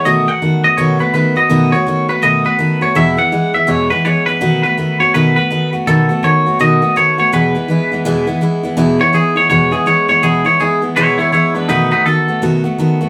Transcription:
X:1
M:4/4
L:1/8
Q:"Swing" 1/4=165
K:E
V:1 name="Clean electric guitar"
d f2 d c B B d- | d c2 B d B2 c | e f2 e c B c B- | B B2 c B B2 z |
A2 c2 d2 c c | B6 z2 | z c G c c G c c | G c G z [Ec] [Ec] [Ec] [=DB] |
[DB] [DB] A2 z4 |]
V:2 name="Steel-string acoustic guitar"
[B,,D,A,B,F] [A,B,F] [D,A,B,F] [A,B,F] [B,,D,A,B,F] [A,B,F] [D,A,B,F] [A,B,F] | [B,,D,A,B,F] [A,B,F] [D,A,B,F] [A,B,F] [B,,D,A,B,F] [A,B,F] [D,A,B,F] [A,B,F] | [E,,B,,E,G,B,E] [E,G,B,E] [E,G,B,E] [E,G,B,E] [E,,B,,E,G,B,E] [E,G,B,E] [E,G,B,E] [E,G,B,E] | [B,,D,A,B,F] [A,B,F] [D,A,B,F] [A,B,F] [B,,D,A,B,F] [A,B,F] [D,A,B,F] [A,B,F] |
[B,,D,A,B,F] [A,B,F] [D,A,B,F] [A,B,F] [B,,D,A,B,F] [A,B,F] [D,A,B,F] [A,B,F] | [E,,B,,E,G,B,E] [E,G,B,E] [E,G,B,E] [E,G,B,E] [E,,B,,E,G,B,E] [E,G,B,E] [E,G,B,E] [E,G,B,E] | [E,,B,,E,G,B,E] [E,G,B,E] [E,G,B,E] [E,G,B,E] [E,,B,,E,G,B,E] [E,G,B,E] [E,G,B,E] [E,G,B,E] | [E,,B,,E,G,B,E] [E,G,B,E] [E,G,B,E] [E,G,B,E] [E,,B,,E,G,B,E] [E,G,B,E] [E,G,B,E] [E,G,B,E] |
[B,,D,A,B,F] [A,B,F] [D,A,B,F] [A,B,F] [B,,D,A,B,F] [A,B,F] [D,A,B,F] [A,B,F] |]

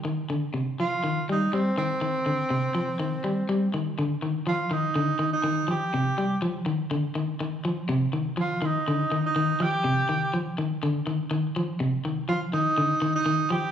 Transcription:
X:1
M:4/4
L:1/16
Q:"Swing 16ths" 1/4=123
K:Cm
V:1 name="Tenor saxophone"
z6 F4 E2 C2 C2- | C12- C2 z2 | z4 F2 E4- E E3 G2- | G4 z12 |
z4 F2 E4- E E3 G2- | G4 z12 | z4 F2 E4- E E3 G2 |]
V:2 name="Clean electric guitar" clef=bass
E,2 D,2 C,2 F,2 E,2 G,2 G,2 E,2 | E,2 D,2 C,2 F,2 E,2 G,2 G,2 E,2 | D,2 E,2 F,2 E,2 D,2 E,2 E,2 F,2 | C,2 G,2 F,2 E,2 D,2 E,2 E,2 F,2 |
C,2 E,2 F,2 E,2 D,2 E,2 E,2 F,2 | C,2 E,2 F,2 E,2 D,2 E,2 E,2 F,2 | C,2 E,2 F,2 E,2 D,2 E,2 E,2 F,2 |]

